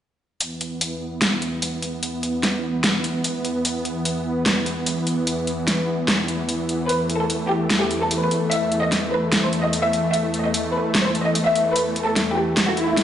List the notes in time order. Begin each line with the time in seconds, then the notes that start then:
0.41 E2 E3 B3, closed hi-hat
0.61 closed hi-hat
0.81 closed hi-hat
1.22 snare, closed hi-hat
1.42 closed hi-hat
1.62 closed hi-hat
1.82 closed hi-hat
2.03 closed hi-hat
2.23 closed hi-hat
2.43 snare, closed hi-hat
2.84 snare, closed hi-hat
3.04 closed hi-hat
3.24 closed hi-hat
3.45 closed hi-hat
3.65 closed hi-hat
3.85 closed hi-hat
4.05 closed hi-hat
4.46 snare, closed hi-hat
4.66 closed hi-hat
4.86 closed hi-hat
5.07 closed hi-hat
5.27 closed hi-hat
5.47 closed hi-hat
5.68 snare, closed hi-hat
6.08 snare, closed hi-hat
6.28 closed hi-hat
6.49 closed hi-hat
6.69 closed hi-hat
6.89 A3 B4, closed hi-hat
7.10 closed hi-hat
7.20 A4
7.30 closed hi-hat
7.50 G4
7.70 snare, closed hi-hat
7.81 G4
7.91 closed hi-hat
8.01 A4
8.11 closed hi-hat
8.21 B4
8.31 closed hi-hat
8.51 E5, closed hi-hat
8.72 closed hi-hat
8.82 D#5
8.92 snare, closed hi-hat
9.12 B4
9.32 snare, closed hi-hat
9.43 C5
9.53 closed hi-hat
9.63 D#5
9.73 closed hi-hat
9.84 E5
9.93 closed hi-hat
10.14 E5, closed hi-hat
10.34 closed hi-hat
10.44 D#5
10.54 closed hi-hat
10.74 B4
10.95 snare, closed hi-hat
11.05 C5
11.15 closed hi-hat
11.25 D#5
11.35 closed hi-hat
11.46 E5
11.55 closed hi-hat
11.76 B4, closed hi-hat
11.96 closed hi-hat
12.07 A4
12.16 snare, closed hi-hat
12.37 G4
12.57 snare, closed hi-hat, swell
12.67 F#4
12.77 closed hi-hat
12.88 E4
12.97 snare, closed hi-hat